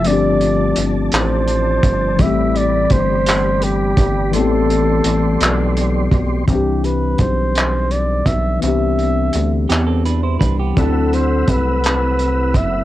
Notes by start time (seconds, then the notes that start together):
Already playing: F3
0.03 G1 F3 A3 D5 A5, closed hi-hat
0.07 C4 D4 D5
0.12 G4
0.41 closed hi-hat
0.76 G1, closed hi-hat
1.12 A1 C5, clap, closed hi-hat
1.48 closed hi-hat
1.83 G1, kick, closed hi-hat
2.16 A1 E3 A3 G4 B5, kick, closed hi-hat
2.21 G3 C4 E5
2.26 G4
2.56 D5, closed hi-hat
2.90 G1 C5, kick, closed hi-hat
3.27 clap, closed hi-hat
3.62 G4, closed hi-hat
3.97 G1, kick, closed hi-hat
4.31 A1 E3 A3 C6, closed hi-hat
4.35 B3 C4 A4
4.41 G4
4.70 closed hi-hat
5.04 A1, closed hi-hat
5.41 B1, clap, closed hi-hat
5.77 closed hi-hat
6.12 B1, kick, closed hi-hat
6.45 C2 D#3 G3, kick, closed hi-hat
6.49 E3 C4 D4 G4
6.55 G4
6.84 B4, closed hi-hat
7.18 B1 C5, kick, closed hi-hat
7.55 clap, closed hi-hat
7.91 D5, closed hi-hat
8.26 B1 E5, kick, closed hi-hat
8.59 E3 B3 E5, closed hi-hat
8.63 C2 C4 D4
8.68 G4
8.99 closed hi-hat
9.33 D2, closed hi-hat
9.69 E2 B3 G4, clap, closed hi-hat
9.87 C4 A4
10.05 D4 B4, closed hi-hat
10.23 E4 C5
10.39 C2 D4 B4, kick, closed hi-hat
10.59 B3 G4
10.74 D2 F#3 A3 C4 F#5 B5 E6, kick, closed hi-hat
10.78 C4 E4 A4
10.84 A4
11.13 C5, closed hi-hat
11.48 C2 B4, kick, closed hi-hat
11.84 clap, closed hi-hat
12.19 closed hi-hat
12.54 F#1 E5, kick, closed hi-hat